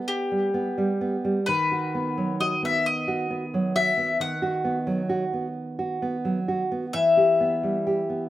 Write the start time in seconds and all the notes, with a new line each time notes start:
Already playing: B3
0.08 G4
0.31 G3
0.54 B3
0.78 G3
1.01 B3
1.25 G3
1.46 D#3 B4
1.72 F#4
1.95 B3
2.17 F#3
2.40 F#4 D#5
2.63 B3 E5
2.86 D#5
3.08 F#4
3.30 B3
3.54 F#3
3.76 F#4 E5
3.97 B3
4.20 D#3 F#5
4.42 F#4
4.64 B3
4.87 F#3
5.09 F#4
5.33 B3
5.79 F#4
6.02 B3
6.25 F#3
6.48 F#4
6.72 B3
6.93 E3 E5
7.17 G4
7.40 B3
7.63 G3
7.87 G4
8.09 B3